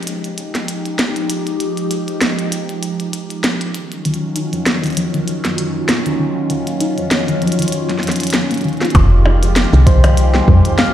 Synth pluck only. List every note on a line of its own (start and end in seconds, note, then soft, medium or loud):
4.05 4.14 D#3 medium
4.36 4.51 D#4 medium
4.53 4.64 F3 medium
4.83 4.95 D#3 medium
4.97 5.13 F3 medium
5.14 5.21 D#3 medium
5.45 5.56 F#3 medium
5.58 5.73 F#3 medium
5.89 6.04 A#3 medium
6.06 6.18 D#3 medium
6.19 6.34 D#3 medium
6.50 6.59 D#3 medium
6.81 6.95 D#4 medium
6.98 7.09 F3 medium
7.28 7.40 D#3 medium
7.42 7.58 F3 medium
7.59 7.66 D#3 medium
7.90 8.01 F#3 medium
8.03 8.19 F3 medium
8.34 8.50 F#3 medium
8.51 8.58 A#3 medium
8.64 8.79 D#3 medium
8.81 8.94 F4 medium
8.95 9.04 D#3 medium
9.25 9.40 D#4 medium
9.43 9.54 F3 medium
9.73 9.85 D#3 medium
9.87 10.03 F3 medium
10.04 10.11 D#3 medium
10.35 10.46 G3 medium
10.48 10.63 G3 medium
10.79 10.93 G#3 medium